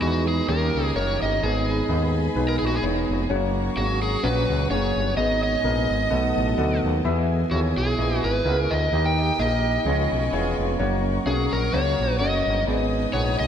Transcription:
Already playing: grand piano D#3, tonewheel organ G#3 B3 D#4, string section B4 D#5 G#5 B5
0.02 fm bass E2, grand piano B3 D#4 G#4 D#5, electric slide guitar F#4
0.28 electric slide guitar G#4
0.48 fm bass D#2, tonewheel organ D#3 G3 A#3 C#4 G4, grand piano D#3 A#3 D#4 G4 C#5, electric slide guitar A#4, string section C#5 G5 A#5
0.75 fm bass C#2
0.96 fm bass F#1, grand piano A#3 D#4 G4 A#4, electric slide guitar C#5
1.22 fm bass G1, electric slide guitar D#5
1.42 fm bass G#1, grand piano G#2 B3 D#4 G#4 D#5, tonewheel organ G#3 B3 D#4, electric slide guitar G#4, string section B4 G#5 B5
1.89 fm bass D#2, grand piano B3 D#4 G#4 D#5
2.36 fm bass B1, grand piano B3 D#4 G#4 B4
2.49 electric slide guitar A#4
2.59 fm bass A#1, electric slide guitar G#4
2.67 electric slide guitar F#4
2.75 electric slide guitar G#4
2.83 fm bass E1, grand piano B3 D#4 G#4 C#5
3.09 fm bass F1
3.30 fm bass F#1, tonewheel organ F#3 C#4, grand piano G#3 C#4 F#4 C#5, string section C#5 F#5 A#5 C#6
3.35 grand piano A#3
3.76 fm bass G#1, grand piano A#3 C#4 F#4 G#4, electric slide guitar F#4
4.03 electric slide guitar G#4
4.23 fm bass A#1, grand piano A#2 C#4 F#4 C#5, electric slide guitar B4
4.49 fm bass C#2
4.70 fm bass F#1, grand piano A#3 C#4 F#4 G#4, electric slide guitar C#5
4.96 fm bass G1
5.17 fm bass G#1, grand piano G#2 B3 D#4 G#4 D#5, tonewheel organ G#3 B3 D#4, string section D#5 G#5 D#6, electric slide guitar D#5
5.43 electric slide guitar D#5
5.64 fm bass A#1, grand piano B3 D#4 G#4 A#4
5.90 fm bass G#1
6.11 fm bass B1, grand piano B2 B3 F#4 A4 D#5, tonewheel organ F#3 A3 A4, string section F#5 A5
6.37 fm bass A1
6.58 fm bass D2, grand piano B3 F#4 A4 D5
6.64 grand piano D#5
6.84 fm bass D#2
7.04 fm bass E2, grand piano E3 B3 E4 G4 E5, string section E4 G#5, tonewheel organ E4 G#4
7.10 grand piano G#4
7.51 fm bass D#2, grand piano B3 E4 G#4 C#5, electric slide guitar F#4
7.77 fm bass B1, electric slide guitar G#4
7.98 fm bass A#1, grand piano B3 E4 G#4 D#5
8.24 fm bass G#1, electric slide guitar B4
8.45 fm bass C#2, grand piano B3 E4 F#4 A#4
8.51 grand piano G#4
8.60 electric slide guitar A#4
8.71 fm bass D2, electric slide guitar D#5
8.92 fm bass D#2, grand piano D#3 A#3 D#4 G4 D#5, tonewheel organ A#3 D#4 G4, string section D#5 G5 A#5 D#6
9.05 electric slide guitar G5
9.39 fm bass A#1, grand piano A#3 D#4 G4 G#4, electric slide guitar D#5
9.45 grand piano A#4
9.85 fm bass C#2, grand piano C#3 B3 F4 G#4 C#5, tonewheel organ F3 G#3 B3 C#4 G#4, string section F5 G#5 B5 C#6
10.12 fm bass B1
10.32 fm bass E1, grand piano B3 E4 G#4 C#5
10.39 grand piano F4
10.58 fm bass F1
10.78 fm bass F#1, tonewheel organ F#3 A#3, grand piano A#3 C#4 F#4 C#5, string section C#5 F#5 A#5 C#6
11.26 fm bass B1, grand piano A#3 C#4 F#4 C#5, electric slide guitar G#4
11.52 fm bass A#1, electric slide guitar A#4
11.73 fm bass C#2, grand piano A#3 C#4 F#4 C#5, electric slide guitar C#5
11.99 fm bass A#1
12.19 fm bass F#1, grand piano A3 C#4 F#4 C#5, electric slide guitar D#5
12.26 grand piano A#3
12.47 fm bass G1
12.66 fm bass G#1, grand piano G#2 B3 D#4 G#4 D5, tonewheel organ G#3 B3 D#4, string section D#5 G#5 B5 D#6
12.73 grand piano D#5
13.13 fm bass A#1, grand piano B3 D#4 G#4 F#5, electric slide guitar C#5
13.39 fm bass B1, electric slide guitar D#5

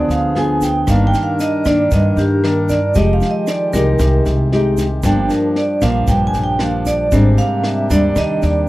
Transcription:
Already playing: nylon-string guitar D3 B3 F4 G#4, harmonium F3 B3 G#4, vibraphone D5
0.09 upright bass D2, vibraphone F5, snare, shaker
0.35 nylon-string guitar B3 F4 G#4, vibraphone G#5, snare
0.61 vibraphone G5, kick, snare, shaker
0.87 upright bass G1, nylon-string guitar G2 D#3 A#3 D4, harmonium D#3 D4 A#4, vibraphone F5, kick, cross-stick, snare, shaker
1.07 vibraphone G5
1.14 snare, shaker
1.23 vibraphone F5
1.39 vibraphone D#5, snare, shaker
1.65 upright bass G2, nylon-string guitar D#3 A#3 D4, vibraphone D5, kick, cross-stick, snare, shaker
1.91 upright bass G2, nylon-string guitar G2, vibraphone D#5, kick, snare, shaker
2.17 upright bass G2, vibraphone G4, snare, shaker
2.44 nylon-string guitar D#3 A#3 D4, vibraphone A#4, cross-stick, snare
2.69 vibraphone D5, kick, snare, shaker
2.94 upright bass F1, nylon-string guitar F3 G#3 D#4 G4, harmonium G#3 G4, vibraphone D#5, kick, snare, shaker
3.13 vibraphone F5
3.21 snare, shaker
3.31 vibraphone D#5
3.47 vibraphone D5, cross-stick, snare, shaker
3.73 upright bass C2, nylon-string guitar G#3 D#4 G4, vibraphone A#4, kick, snare, shaker
3.99 upright bass C2, nylon-string guitar C3, kick, cross-stick, snare, shaker
4.25 upright bass C2, snare, shaker
4.52 nylon-string guitar G#3 D#4 G4, snare
4.77 kick, snare, shaker
5.03 upright bass G1, nylon-string guitar G2 F3 A#3 D4, harmonium F3 D4, vibraphone G5, kick, cross-stick, snare, shaker
5.29 vibraphone A#4, snare, shaker
5.56 vibraphone D5, snare
5.81 upright bass A#1, nylon-string guitar F3 A#3 D4, vibraphone F5, kick, cross-stick, snare, shaker
6.07 upright bass A#1, nylon-string guitar G2, vibraphone G5, kick, snare, shaker
6.27 vibraphone G#5
6.34 upright bass A#1, snare, shaker
6.44 vibraphone G5
6.59 nylon-string guitar F3 A#3 D4, vibraphone F5, cross-stick, snare
6.86 vibraphone D5, kick, snare, shaker
7.11 upright bass G#1, nylon-string guitar G#2 G3 C4 D4, harmonium C3 A#3 G4, vibraphone C5, kick, snare, shaker
7.37 vibraphone F5, snare, shaker
7.64 vibraphone E5, cross-stick, snare
7.90 upright bass D#2, nylon-string guitar G3 C4 D4, vibraphone D5, kick, snare, shaker
8.16 upright bass D#2, nylon-string guitar D#3, vibraphone D#5, kick, cross-stick, snare, shaker
8.42 upright bass D#2, vibraphone D5, snare, shaker

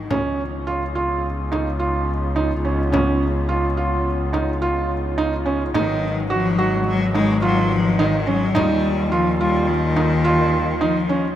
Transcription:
Already playing: cello D#3
0.10 double bass C#2, woodwind section C#3 B3 F4, felt piano C#4, frame drum
0.67 felt piano F4
0.95 felt piano F4, frame drum
1.52 felt piano D#4, frame drum
1.79 felt piano F4, frame drum
2.36 felt piano D#4
2.65 felt piano C#4
2.92 felt piano C#4, frame drum
3.49 felt piano F4
3.77 felt piano F4, frame drum
4.33 felt piano D#4, frame drum
4.62 felt piano F4, frame drum
5.18 felt piano D#4
5.46 felt piano C#4
5.74 double bass G#1, woodwind section B2 F#3 G#3, cello D#3, felt piano D#4, frame drum
6.30 cello F3, felt piano F#4
6.58 cello F#3, felt piano F#4, frame drum
6.87 cello F#3
7.14 cello G#3, felt piano D#4, frame drum
7.42 cello F#3, felt piano F4, frame drum
7.72 cello F3
7.99 cello D#3, felt piano D#4
8.27 cello F#3, felt piano C#4
8.55 double bass D#2, woodwind section D#3 G3 F4, cello G3, felt piano D#4, frame drum
8.85 frame drum
9.12 cello F3, felt piano F4
9.40 cello G3, felt piano F4
9.68 cello D#3
9.96 felt piano D#4, frame drum
10.25 felt piano F4
10.81 cello F3, felt piano D#4
11.09 felt piano C#4

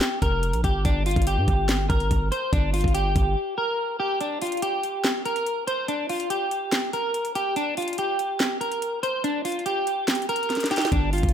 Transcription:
Already playing: clean electric guitar G4
0.01 snare, clap, closed hi-hat
0.22 808-style bass F1, clean electric guitar A#4, kick, closed hi-hat
0.43 closed hi-hat
0.53 808-style bass A#1, closed hi-hat
0.64 808-style bass G1, clean electric guitar G4, kick, closed hi-hat
0.85 808-style bass G1, clean electric guitar D4, kick, closed hi-hat
1.06 clean electric guitar F4, closed hi-hat, open hi-hat
1.11 closed hi-hat
1.16 808-style bass G1, kick, closed hi-hat
1.22 closed hi-hat
1.27 clean electric guitar G4, closed hi-hat
1.37 808-style bass G2
1.48 808-style bass G1, kick, closed hi-hat
1.69 snare, clap, closed hi-hat
1.89 808-style bass G1, clean electric guitar A#4, kick, closed hi-hat
2.00 closed hi-hat
2.11 808-style bass G1, kick, closed hi-hat
2.32 clean electric guitar C5, closed hi-hat
2.53 808-style bass G1, clean electric guitar D4, kick, closed hi-hat
2.73 clean electric guitar F4, closed hi-hat, open hi-hat
2.81 808-style bass G1, kick, closed hi-hat
2.88 closed hi-hat
2.94 clean electric guitar G4, closed hi-hat
3.16 808-style bass G1, kick, closed hi-hat
3.58 clean electric guitar A#4
4.00 clean electric guitar G4
4.21 clean electric guitar D4, closed hi-hat
4.42 clean electric guitar F4, closed hi-hat, open hi-hat
4.47 closed hi-hat
4.52 closed hi-hat
4.57 closed hi-hat
4.62 clean electric guitar G4, closed hi-hat
4.83 closed hi-hat
5.04 snare, clap, closed hi-hat
5.25 clean electric guitar A#4, closed hi-hat
5.36 closed hi-hat
5.46 closed hi-hat
5.67 clean electric guitar C5, closed hi-hat
5.88 clean electric guitar D4, closed hi-hat
6.09 clean electric guitar F4, closed hi-hat, open hi-hat
6.20 closed hi-hat
6.30 clean electric guitar G4, closed hi-hat
6.51 closed hi-hat
6.72 snare, clap, closed hi-hat
6.93 clean electric guitar A#4, closed hi-hat
7.14 closed hi-hat
7.25 closed hi-hat
7.35 clean electric guitar G4, closed hi-hat
7.56 clean electric guitar D4, closed hi-hat
7.77 clean electric guitar F4, closed hi-hat, open hi-hat
7.82 closed hi-hat
7.88 closed hi-hat
7.93 closed hi-hat
7.98 clean electric guitar G4, closed hi-hat
8.19 closed hi-hat
8.40 snare, clap, closed hi-hat
8.61 clean electric guitar A#4, closed hi-hat
8.72 closed hi-hat
8.82 closed hi-hat
9.03 clean electric guitar C5, closed hi-hat
9.24 clean electric guitar D4, closed hi-hat
9.45 clean electric guitar F4, closed hi-hat, open hi-hat
9.52 closed hi-hat
9.59 closed hi-hat
9.66 clean electric guitar G4, closed hi-hat
9.87 closed hi-hat
10.08 snare, clap, closed hi-hat
10.15 closed hi-hat
10.22 closed hi-hat
10.29 clean electric guitar A#4, closed hi-hat
10.36 closed hi-hat
10.43 closed hi-hat
10.50 snare, closed hi-hat
10.55 snare, closed hi-hat
10.60 snare, closed hi-hat
10.66 closed hi-hat
10.71 clean electric guitar G4, snare, closed hi-hat
10.76 snare, closed hi-hat
10.81 snare, closed hi-hat
10.87 closed hi-hat
10.92 808-style bass G1, clean electric guitar D4, kick, closed hi-hat
11.13 clean electric guitar F4, closed hi-hat, open hi-hat
11.18 closed hi-hat
11.23 808-style bass G1, kick, closed hi-hat
11.29 closed hi-hat

